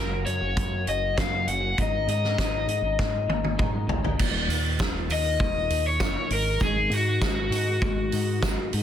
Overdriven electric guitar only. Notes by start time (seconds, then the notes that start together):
Already playing: A#4
0.26 C#5
0.88 D#5
1.20 F5
1.48 F#5
1.81 D#5
2.10 D#5
5.12 D#5
5.87 C#5
6.33 A#4
6.63 G#4
6.93 F#4